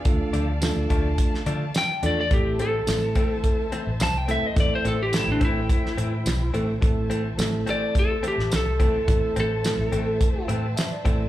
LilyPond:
<<
  \new Staff \with { instrumentName = "String section" } { \time 4/4 \key a \minor \tempo 4 = 106 << { a''1 | a''1 | g''1 | a''1~ |
a''1 | } \\ { <d'' f''>1 | <c'' e''>1~ | <c'' e''>1 | <c'' e''>1~ |
<c'' e''>1 | } >> }
  \new Staff \with { instrumentName = "Lead electric guitar" } { \time 4/4 \key a \minor r2. g''8 d''16 d''16 | g'8 a'2 r8 a''16 g''16 e''16 dis''16 | d''16 c''16 a'16 g'16 e'16 d'16 e'2 r8 | r4. d''8 a'8 g'8 a'4~ |
a'8 a'2 r4. | }
  \new Staff \with { instrumentName = "Tine electric piano" } { \time 4/4 \key a \minor << { r1 | r1 | r1 | r1 |
r2 r8 g''8 e''16 d''8. | } \\ { <a d' f' a'>8 r8 <a d' f' a'>4. r4 <a d' f' a'>8 | <a c' e' a'>8 r8 <a c' e' a'>4. r4 <a c' e' a'>8 | <a c' e' a'>8 r8 <a c' e' a'>4. r4 <a c' e' a'>8 | <a c' e' a'>8 r8 <a c' e' a'>4. r4 <a c' e' a'>8 |
<a c' e' a'>8 r8 <a c' e' a'>4. r4 <a c' e' a'>8 | } >> }
  \new Staff \with { instrumentName = "Clean electric guitar" } { \time 4/4 \key a \minor r8 <f a d'>8 r8 <f a d'>8 r8 <f a d'>8 r8 <f a d'>8 | r8 <e a c'>8 r8 <e a c'>8 r8 <e a c'>8 r8 <e a c'>8 | r8 <e a c'>8 r8 <e a c'>8 r8 <e a c'>8 r8 <e a c'>8 | r8 <e a c'>8 r8 <e a c'>8 r8 <e a c'>8 r8 <e a c'>8 |
r8 <e a c'>8 r8 <e a c'>8 r8 <e a c'>8 r8 <e a c'>8 | }
  \new Staff \with { instrumentName = "Fingered electric bass" } { \clef bass \time 4/4 \key a \minor d,16 r16 d,8. d,16 d,8 r8 d8 r8 e,8 | a,,4 a,,8 r4 r16 a,,16 c,8. r16 | a,,16 r16 a,,8. a,,16 a,,8 r8 a,8 b,,8 a,,8 | a,,4 a,,8 r4 r16 a,,16 c,8. r16 |
a,,16 r16 a,,8. a,,16 a,,8 r8 a,8 r8 a,,8 | }
  \new DrumStaff \with { instrumentName = "Drums" } \drummode { \time 4/4 <hh bd>8 hh8 <hh sn tamb>8 <hh bd>8 <hh bd>16 sn16 hh8 <hh sn tamb>8 hh8 | <hh bd>8 hh8 <hh sn tamb>8 <hh bd>8 <hh bd>8 hh8 <hh sn tamb>8 hh8 | <hh bd>8 hh8 <hh sn tamb>8 <hh bd>8 <hh bd>16 sn16 hh8 <hh sn tamb>8 hh8 | <hh bd>8 hh8 <hh sn tamb>8 hh8 <hh bd>8 hh16 sn16 <hh sn tamb>8 <hh bd>8 |
<hh bd>8 hh8 <hh sn tamb>8 hh8 <hh bd>8 hh8 <hh sn tamb>8 <hh bd>8 | }
>>